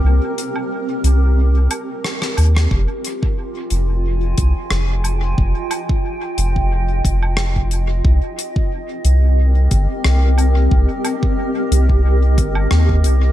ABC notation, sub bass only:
X:1
M:4/4
L:1/8
Q:"Swing 16ths" 1/4=90
K:Fm
V:1 name="Sub bass" clef=bass
C,, z2 C,,2 z2 E,, | F,,, z2 F,,,2 C,, F,,,2 | F,,, z2 F,,,2 F,,,3 | C,, z2 C,,2 G,,, C,,2 |
C,, z2 C,,2 G,,, E,, C,, |]